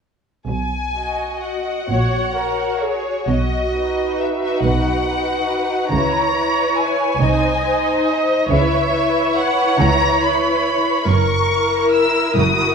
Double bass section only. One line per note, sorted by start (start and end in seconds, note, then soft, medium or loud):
0.48 1.72 B1 soft
1.90 3.11 A#1 soft
3.29 4.47 B1 soft
4.64 5.75 B1 medium
5.91 7.04 C#2 medium
7.20 8.33 C2 medium
8.49 9.61 C#2 medium
9.79 10.90 C#2 medium
11.06 12.18 F#1 medium
12.36 12.75 F#1 medium